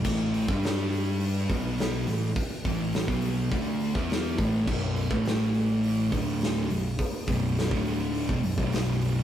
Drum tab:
CC |x---------------|----------------|x---------------|----------------|
HH |--o-o-o-o-o-o-o-|o-o-o-o-o-o-o-o-|--o-o-o-o-o-o-o-|o-o-o-o-o-o-o-o-|
SD |----o-------o---|----o-------o---|----o-------o---|----o-------o---|
BD |o--o------o-----|o-o--o--o--o--o-|o--o------o-----|o-o--o---o-o----|